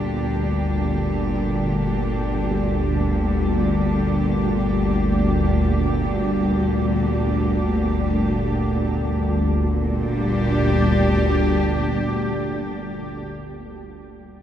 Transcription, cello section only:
Already playing: A#2 G3 D4 G4
9.49 A#2
9.67 G3
9.85 D4
10.02 G4

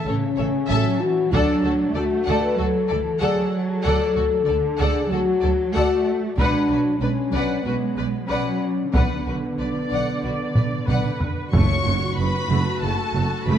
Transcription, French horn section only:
0.08 C#4
1.00 F#4
1.32 D4
1.94 F#4
2.41 B4
2.58 A4
3.21 G#4
3.70 A4
3.85 A4
4.80 G#4
5.11 F#4
5.75 F#4
6.39 D4
6.99 C#4
7.63 B3
8.28 C#4
8.94 B3
11.53 A3 F#4

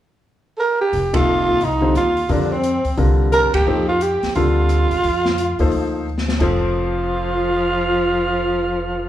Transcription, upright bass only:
0.93 F1
1.49 D#2
1.62 C2
1.96 D#2
2.29 F2
2.85 muted upright bass stroke
2.98 C2
3.44 F2
3.55 D#2
3.67 F2
4.23 muted upright bass stroke
4.36 D2
4.91 E2
5.04 F2
5.59 D#2
5.71 D2
6.41 F1

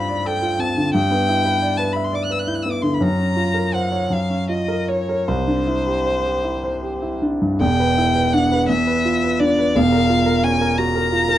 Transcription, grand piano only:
Already playing: G2 C4 F4 A4 C5 D5 F5
0.09 D5
0.25 A4
0.42 F4
0.59 C4
0.77 D3
0.94 G2
1.11 B3
1.29 E4
1.45 B4
1.62 D5
1.79 B4
1.96 E5
2.13 D5
2.30 B4
2.47 E4
2.65 B3
2.83 D3
3.01 F#2
3.19 C#4
3.36 F4
3.54 A#4
3.73 C5
3.92 C#5
4.10 F#2
4.30 C#4
4.49 F4
4.68 A#4
4.88 C#5
5.09 A#4
5.28 C2
5.47 D4
5.67 E4
5.87 G4
6.06 C5
6.25 G4
6.44 E4
6.64 C5
6.82 G4
7.02 E4
7.22 D4
7.41 G2
7.60 E1 E2
7.80 B4
7.97 E4
8.15 B4
8.34 D4
8.52 B4
8.69 E2
8.87 B4
9.05 F4
9.23 B4
9.40 D4
9.59 B4
9.75 E1 E2
9.92 A#4
10.10 F4
10.26 A#4
10.43 C#4
10.61 A#4
10.78 F#4
10.96 A#4
11.12 F4
11.29 A#4

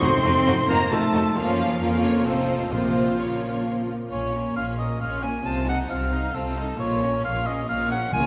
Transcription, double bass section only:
0.03 F2
0.25 F2
0.48 F2
0.70 F2
0.92 F2
1.14 F2
1.37 F#2
1.82 F2
2.26 A1
2.73 A#1
4.11 A#1
4.56 A#1
5.01 A#1
5.45 C2
5.90 C2
6.35 C2
6.80 A#1
7.25 A#1
7.69 A#1
8.13 C#2

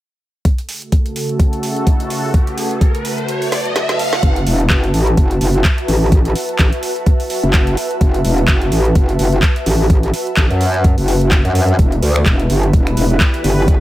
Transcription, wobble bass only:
4.23 F#1
4.47 E1
4.70 F#1
4.94 A1
5.17 F#1
5.41 F#1
5.88 A1
6.59 A1
7.43 F#1
8.01 F#1
8.25 E1
8.48 F#1
8.72 A1
8.95 F#1
9.19 F#1
9.66 A1
10.37 A1
10.50 F#2
10.98 F#1
11.45 F#2
11.79 E1
12.02 D2
12.26 E1
12.50 G1
12.73 E1
12.97 E1
13.44 G1

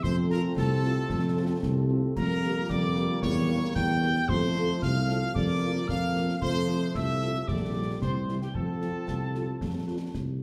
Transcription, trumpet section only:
0.04 C5
0.30 A#4
0.57 A4
2.17 A#4
2.70 D5
3.22 C#5
3.76 G5
4.28 C5
4.83 F5
5.36 D5
5.89 F5
6.42 C5
6.95 E5
7.48 D5
8.01 C5
8.43 G4
8.55 A4

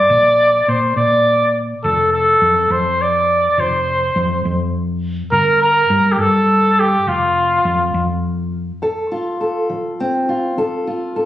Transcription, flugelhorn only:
Already playing: D5
0.68 C5
0.97 D5
1.83 A4
2.13 A4
2.72 C5
3.01 D5
3.60 C5
5.32 A#4
5.62 A#4
6.12 G4
6.19 A4
6.80 G4
7.08 F4

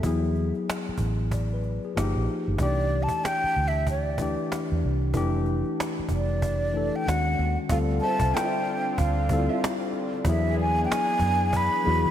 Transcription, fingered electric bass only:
0.04 E2
0.89 muted fingered electric bass stroke
0.99 A1
1.97 G1
2.16 A#1
2.48 G1
2.60 C2
3.44 muted fingered electric bass stroke
3.56 D2
4.72 E2
4.85 C2
5.15 F1
5.99 muted fingered electric bass stroke
6.10 F1
7.08 D#2
7.39 D#2
7.71 D2
8.21 C2
8.99 D2
9.30 D2
10.26 E2
11.21 F#2
11.87 E2
12.05 E3

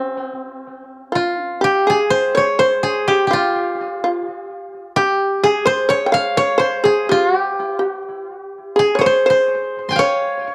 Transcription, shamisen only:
Already playing: C4
1.12 F4
1.43 C#4
1.61 G4
1.87 G#4
2.35 C#5
2.59 C5
3.08 G4
3.31 F4
4.04 F4
4.97 G4
5.43 G#4
5.65 C5
5.89 C#5
6.06 G5
6.12 F5
6.37 C#5
6.58 C5
6.84 G#4
7.09 G4
7.79 G4
8.76 G#4
8.95 C#5
9.01 C5
9.26 C5
9.99 C#5
10.39 C5

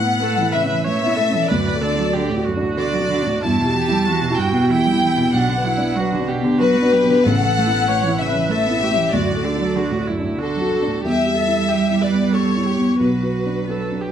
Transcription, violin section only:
Already playing: F#5
0.53 E5
0.85 E5
1.48 D5
2.78 D5
3.43 A5
4.38 G5
4.70 G5
5.32 F#5
6.60 B4
7.25 F#5
8.19 E5
8.51 E5
9.13 D5
10.38 A4
11.04 E5
12.00 D5
12.33 C#5
13.00 B4

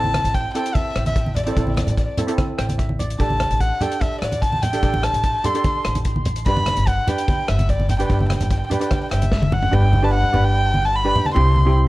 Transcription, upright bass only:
Already playing: A1
0.24 A1
0.95 A1
1.57 A1
1.87 A1
2.59 A1
3.20 A1
3.50 A1
4.22 A1
4.83 A1
5.13 A1
5.85 A1
6.46 G1
6.77 G1
7.49 G1
8.10 G1
8.41 G1
9.12 G1
9.73 G1
10.23 G2
10.34 G1
11.36 C2

